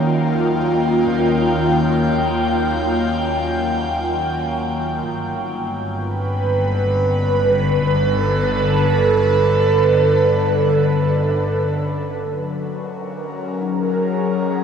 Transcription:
0.00 5.04 D#2 medium
0.00 5.08 D#3 medium
0.00 12.25 F#3 medium
0.00 5.08 A#3 medium
0.00 12.34 C#4 medium
0.00 5.07 F4 medium
0.00 6.60 G5 medium
5.08 12.21 G1 medium
5.92 12.25 B4 medium
6.28 12.27 D3 medium
7.75 12.27 A4 medium
12.25 14.64 F#3 medium
12.25 14.64 G#3 medium
12.25 14.64 A#3 medium
12.68 14.64 A#4 medium
12.81 14.64 C#4 medium
13.45 14.64 G#4 medium
13.60 14.64 D#4 medium

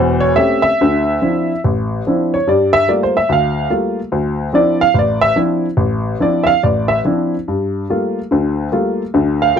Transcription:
0.00 0.32 E1 medium
0.00 0.32 E2 medium
0.00 0.22 C5 medium
0.20 0.36 C#5 medium
0.36 0.67 A3 medium
0.36 0.67 C4 soft
0.36 0.67 C#4 medium
0.36 0.67 G4 medium
0.36 0.61 E5 medium
0.62 1.58 E5 loud
0.81 1.17 D2 medium
0.81 1.17 D3 medium
1.21 1.51 F3 medium
1.21 1.51 C4 soft
1.21 1.51 D4 soft
1.21 1.51 E4 soft
1.64 2.00 A1 medium
2.07 2.34 F3 soft
2.07 2.35 C4 soft
2.07 2.35 D4 soft
2.07 2.35 E4 medium
2.34 2.47 C#5 medium
2.47 2.83 G2 medium
2.47 2.83 G3 medium
2.47 2.74 D5 medium
2.73 2.87 E5 loud
2.88 3.16 G3 medium
2.88 3.17 A3 soft
2.88 3.17 A#3 soft
2.88 3.17 F4 medium
2.88 3.02 D5 medium
3.03 3.16 C5 medium
3.17 3.30 E5 medium
3.29 3.65 D2 medium
3.29 3.69 F5 medium
3.70 3.98 G3 soft
3.70 3.99 A3 soft
3.70 3.98 A#3 soft
3.70 3.99 F4 medium
4.12 4.48 D2 medium
4.53 4.82 F3 soft
4.53 4.82 C4 soft
4.53 4.82 D4 medium
4.53 4.82 E4 medium
4.53 4.80 D5 medium
4.81 4.95 F5 loud
4.94 5.31 A1 medium
4.99 5.23 D5 medium
5.21 5.36 E5 loud
5.36 5.65 F3 medium
5.36 5.65 C4 soft
5.36 5.65 D4 soft
5.36 5.65 E4 medium
5.77 6.14 A1 medium
6.20 6.49 F3 medium
6.20 6.49 C4 soft
6.20 6.49 D4 soft
6.20 6.49 E4 medium
6.20 6.48 D5 medium
6.44 6.46 E5 medium
6.44 6.61 F5 loud
6.63 7.00 A1 medium
6.63 6.89 D5 medium
6.88 6.98 E5 medium
7.05 7.33 F3 soft
7.05 7.34 C4 soft
7.05 7.34 D4 soft
7.05 7.34 E4 medium
7.48 7.84 G2 medium
7.89 8.18 G3 soft
7.89 8.18 A3 soft
7.89 8.18 A#3 soft
7.89 8.18 F4 medium
8.31 8.68 D2 medium
8.31 8.67 D3 medium
8.71 9.01 G3 medium
8.71 9.01 A3 medium
8.71 9.01 A#3 soft
8.71 9.02 F4 medium
9.14 9.50 D2 medium
9.14 9.50 D3 medium
9.42 9.56 F5 medium
9.56 9.60 G3 medium
9.56 9.60 A3 soft
9.56 9.60 A#3 soft
9.56 9.60 F4 medium

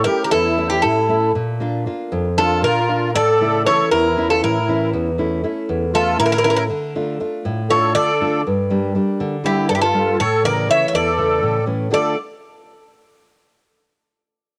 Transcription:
0.04 0.47 A3 soft
0.04 0.47 C#4 soft
0.04 0.48 E4 medium
0.04 0.24 G4 medium
0.04 0.23 A#4 medium
0.24 0.31 G4 medium
0.24 0.31 A#4 medium
0.31 0.82 E2 medium
0.31 0.68 E4 medium
0.31 0.68 A4 loud
0.58 0.99 A3 medium
0.58 0.99 C#4 medium
0.58 0.99 E4 medium
0.70 0.83 E4 medium
0.70 0.82 G4 medium
0.82 1.34 A2 medium
0.82 1.32 E4 medium
0.82 1.31 A4 medium
1.09 1.30 A3 medium
1.09 1.30 C#4 medium
1.09 1.30 E4 medium
1.35 1.85 A#2 medium
1.60 1.85 A#3 medium
1.60 1.86 D4 soft
1.60 1.85 F4 medium
1.86 2.27 A#3 soft
1.86 2.28 D4 soft
1.86 2.28 F4 medium
2.12 2.62 F2 medium
2.38 2.79 A#3 medium
2.38 2.79 D4 medium
2.38 2.62 F4 medium
2.38 2.79 F4 medium
2.38 2.62 A4 medium
2.62 3.12 A#2 medium
2.62 3.11 F4 medium
2.62 3.15 A#4 medium
2.89 3.09 A#3 medium
2.89 3.09 D4 soft
2.89 3.10 F4 medium
3.15 3.64 A2 medium
3.15 3.62 A4 loud
3.15 3.66 D5 loud
3.41 3.82 C#3 soft
3.41 3.81 A3 medium
3.41 3.65 E4 medium
3.65 4.07 E3 soft
3.65 4.07 C#4 soft
3.65 4.07 E4 medium
3.65 3.89 A4 medium
3.65 3.90 C#5 loud
3.91 4.41 E2 medium
3.91 4.27 E4 medium
3.91 4.30 A#4 medium
4.17 4.57 E3 medium
4.17 4.58 C#4 soft
4.17 4.58 E4 medium
4.28 4.41 F4 medium
4.28 4.42 A4 medium
4.42 4.92 A2 medium
4.42 4.89 E4 medium
4.42 4.90 A#4 medium
4.68 5.09 E3 medium
4.68 5.09 C#4 soft
4.68 5.09 E4 medium
4.93 5.42 E2 medium
5.18 5.43 A3 medium
5.18 5.43 C#4 soft
5.18 5.43 E4 medium
5.44 5.84 A3 soft
5.44 5.84 C#4 soft
5.44 5.84 E4 medium
5.69 6.18 E2 medium
5.94 6.34 A3 medium
5.94 6.35 C#4 medium
5.94 6.17 F4 medium
5.94 6.19 A4 medium
5.94 6.35 E5 medium
6.19 6.68 A2 medium
6.19 6.66 E4 medium
6.19 6.24 A#4 loud
6.26 6.31 A#4 medium
6.32 6.37 A#4 medium
6.38 6.43 A#4 medium
6.44 6.65 A3 medium
6.44 6.65 C#4 soft
6.44 6.65 E4 medium
6.44 6.49 A#4 medium
6.50 6.55 A#4 medium
6.57 6.63 A#4 medium
6.70 7.19 D3 medium
6.96 7.19 A3 medium
6.96 7.19 D4 medium
6.96 7.19 F4 medium
7.20 7.60 A3 soft
7.20 7.61 D4 soft
7.20 7.61 F4 medium
7.45 7.94 A2 medium
7.70 8.10 A3 medium
7.70 8.10 D4 soft
7.70 8.10 F4 medium
7.70 7.93 A4 medium
7.70 7.95 C#5 medium
7.95 8.44 D3 medium
7.95 8.42 A4 medium
7.95 8.42 D5 loud
8.21 8.41 A3 medium
8.21 8.41 D4 soft
8.21 8.41 F4 medium
8.47 8.95 G2 medium
8.70 8.94 G3 medium
8.70 8.94 A#3 medium
8.70 8.94 D4 medium
8.95 9.35 G3 soft
8.95 9.35 A#3 soft
8.95 9.35 D4 medium
9.20 9.69 D3 medium
9.44 9.84 G3 medium
9.44 9.84 A#3 medium
9.44 9.85 D4 medium
9.44 9.68 E4 medium
9.44 9.69 G4 medium
9.69 10.18 G2 medium
9.69 9.75 D4 medium
9.69 9.74 A4 medium
9.75 9.81 E4 medium
9.75 9.81 G4 medium
9.82 10.17 F4 medium
9.82 10.17 A4 medium
9.94 10.14 G3 medium
9.94 10.14 A#3 soft
9.94 10.15 D4 medium
10.19 10.68 A2 medium
10.19 10.43 A4 medium
10.19 10.43 C#5 medium
10.44 10.84 C#3 medium
10.44 10.67 E3 medium
10.44 10.68 A#4 medium
10.44 10.68 D5 loud
10.68 11.08 E3 soft
10.68 11.08 A3 soft
10.68 11.09 E4 medium
10.68 10.87 C#5 medium
10.68 10.87 E5 loud
10.88 10.94 C#5 medium
10.88 10.94 E5 medium
10.93 11.42 E2 medium
10.93 11.65 A4 medium
10.93 11.65 D5 medium
11.18 11.58 C#3 medium
11.18 11.58 E3 medium
11.18 11.58 A3 soft
11.43 11.91 A2 medium
11.66 11.87 E3 soft
11.66 11.87 A3 soft
11.66 11.87 C#4 medium
11.91 12.15 D3 medium
11.91 12.15 A3 soft
11.91 12.15 D4 medium
11.91 12.15 F4 medium
11.91 12.16 A4 medium
11.91 12.16 D5 medium

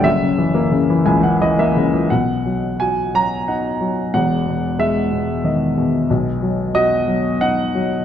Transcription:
0.04 2.07 F#1 medium
0.04 2.07 F#2 medium
0.04 1.58 E5 loud
0.22 0.70 C#3 medium
0.38 0.88 E3 medium
0.54 1.57 A#3 medium
0.72 1.04 C#3 medium
0.90 1.40 E3 medium
1.06 2.06 C#2 medium
1.06 1.22 C#3 medium
1.06 1.22 G#5 medium
1.23 1.75 C#3 medium
1.23 1.40 F#5 medium
1.42 1.92 E3 medium
1.42 1.58 D#5 medium
1.59 2.09 A#3 medium
1.59 2.07 E5 medium
1.77 2.10 C#3 medium
1.94 2.10 E3 medium
2.10 4.09 B1 medium
2.10 4.09 B2 medium
2.10 2.81 F#5 medium
2.46 3.13 F#3 soft
2.80 4.10 F#4 medium
2.80 3.14 G#5 medium
3.14 3.79 F#3 soft
3.14 3.48 A#5 loud
3.48 4.12 D#4 medium
3.48 4.12 F#5 medium
3.81 4.12 F#3 medium
4.14 6.07 E1 medium
4.14 6.07 E2 medium
4.14 4.81 F#5 medium
4.47 5.10 B2 soft
4.79 6.07 G#3 medium
4.79 5.47 E5 medium
5.12 5.76 B2 medium
5.44 6.08 D#3 medium
5.44 5.91 D#5 medium
5.77 6.08 B2 medium
6.10 8.05 B1 medium
6.10 8.05 B2 medium
6.42 7.06 F#3 medium
6.75 8.05 F#4 medium
6.75 7.44 D#5 loud
7.07 7.73 F#3 medium
7.41 8.05 D#4 medium
7.41 8.05 F#5 medium
7.75 8.05 F#3 medium

